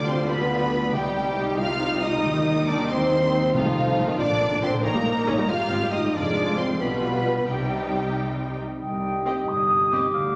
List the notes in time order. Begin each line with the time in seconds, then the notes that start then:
Already playing: D2 D3 G3 F4 G4
0.06 C4 F4 C5 C6
0.17 F5
0.28 B3 B4 G5 B5
0.39 G4
0.50 F4
0.61 G3
0.72 D4
0.83 G3
0.93 C2 C3 G3 D#4 G4 G5
1.05 G3
1.16 D#4
1.26 G4
1.37 D#4
1.48 D#5
1.58 F4 F5 G5 F6
1.70 G4
1.81 D#4
1.92 G3
2.02 C4 D#4 D#5 D#6
2.13 G3
2.24 D#2 D#3
2.35 D#4
2.46 G4
2.57 D#4
2.66 D4 D5 D#5 D6
2.78 G5
2.89 C4 C5 D#5 C6
3.00 G4
3.11 D#4
3.33 D#4
3.43 G3
3.53 C2 C3 F3 A3 D#4 F4 F5
3.64 C3 D#3 A3
3.75 C2 C3 F3 D#4
3.86 F4
3.97 C2 C3 A3
4.08 C3 D#3 D#5
4.18 A#1 A#2 F3 D4 D5 D6
4.29 A#2 D3 A#3
4.40 A#1 A#2 A#3
4.50 A#2 D3 F4
4.61 A#1 A#2 F3 C4 A#4 C5 C6
4.72 A#2 D3 D5
4.83 A#1 A#2 A#3 C#4 D#4 A#4 A#5
4.94 A#2 G3 C#4
5.05 A#1 A#2 A#3 D#4
5.15 G4
5.27 A#1 A#2 C#4 C#5
5.38 A#2 G3 D#5
5.48 G#1 G#2 G#3 F4 G4 F5 F6
5.59 G#2 G3 C4
5.70 G#1 G#2 C4 D#4
5.81 G#2 G3 G4
5.92 G#1 G#2 G#3 D#4 C5 D#5 D#6
6.03 G#2 G3 D#5
6.14 F1 F2 G#3 D4 F4 D5 D6
6.25 G#3
6.36 D4
6.47 F4
6.58 C4 G#4 C5 C6
6.69 D5
6.79 B1 B2 G3 B3 F4 B4 B5
6.91 G3
7.03 D4
7.13 F4
7.36 D5
7.47 C2 C3 G3 D#4 G4 G5
7.58 C4
7.70 D#4
7.81 G4
7.92 C5
8.03 D#5
8.14 G5
8.25 C5
8.37 G4
8.48 D#4
8.60 C4
8.71 G3
8.81 C2 C3 G4 D#5 G5
8.92 G3
9.04 D#4
9.15 G4
9.25 C4 D#4 G4 D#5
9.37 D#5
9.47 G1 G2 G5 D#6
9.59 G4
9.70 D#4
9.81 G3
9.92 C4 G4 D#5 D6
10.03 G3
10.13 D2 D3 F5
10.25 G3